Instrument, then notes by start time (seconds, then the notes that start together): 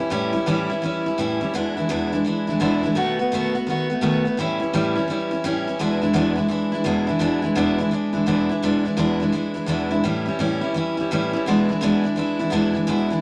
steel-string acoustic guitar
0.00 C#4
0.10 A2 E3 G3 C#4 E4
0.33 G3 C#4 E4
0.46 A2 E3 G3 C#4 E4
0.70 G3 C#4 E4
0.82 E3 G3 C#4 E4
1.06 G3 C#4 E4
1.18 A2 E3 G3 C#4 E4
1.41 G3 C#4 E4
1.54 E2 B2 E3 G#3 D4 E4
1.77 E3 G#3 D4 E4
1.89 E2 B2 E3 G#3 D4 E4
2.12 E3 G#3 D4 E4
2.25 E3 G#3 D4 E4
2.47 E3 G#3 D4 E4
2.60 E2 B2 E3 G#3 D4 E4
2.83 E3 G#3 D4 E4
2.95 B2 D#3 A3 B3 F#4
3.19 A3 B3 F#4
3.32 B2 D#3 A3 B3 F#4
3.55 A3 B3 F#4
3.67 D#3 A3 B3 F#4
3.90 A3 B3 F#4
4.01 B2 D#3 A3 B3 F#4
4.25 A3 B3 F#4
4.37 A2 E3 G3 C#4 E4
4.60 G3 C#4 E4
4.73 A2 E3 G3 C#4 E4
4.95 G3 C#4 E4
5.08 E3 G3 C#4 E4
5.31 G3 C#4 E4
5.44 A2 E3 G3 C#4 E4
5.67 G3 C#4 E4
5.79 E2 B2 E3 G#3 D4 E4
6.01 E3 G#3 D4 E4
6.13 E2 B2 E3 G#3 D4 E4
6.35 E3 G#3 D4 E4
6.48 E3 G#3 D4 E4
6.72 E3 G#3 D4 E4
6.84 E2 B2 E3 G#3 D4 E4
7.07 E3 G#3 D4 E4
7.19 E2 B2 E3 G#3 D4 E4
7.42 E3 G#3 D4 E4
7.55 E2 B2 E3 G#3 D4 E4
7.78 E3 G#3 D4 E4
7.91 E3 G#3 D4 E4
8.13 E3 G#3 D4 E4
8.26 E2 B2 E3 G#3 D4 E4
8.49 E3 G#3 D4 E4
8.62 E2 B2 E3 G#3 D4 E4
8.85 E3 G#3 D4 E4
8.97 E2 B2 E3 G#3 D4 E4
9.20 E3 G#3 D4 E4
9.32 E3 G#3 D4 E4
9.54 E3 G#3 D4 E4
9.66 E2 B2 E3 G#3 D4 E4
9.91 E3 G#3 D4 E4
10.04 A2 E3 G3 C#4 E4
10.26 G3 C#4 E4
10.39 A2 E3 G3 C#4 E4
10.61 G3 C#4 E4
10.74 E3 G3 C#4 E4
10.97 G3 C#4 E4
11.11 A2 E3 G3 C#4 E4
11.33 G3 C#4 E4
11.46 E2 B2 E3 G#3 D4 E4
11.69 E3 G#3 D4 E4
11.81 E2 B2 E3 G#3 D4 E4
12.04 E3 G#3 D4 E4
12.16 E3 G#3 D4 E4
12.39 E3 G#3 D4 E4
12.50 E2 B2 E3 G#3 D4 E4
12.74 E3 G#3 D4 E4
12.87 E2 B2 E3 G#3 D4 E4
13.10 E3 G#3 D4 E4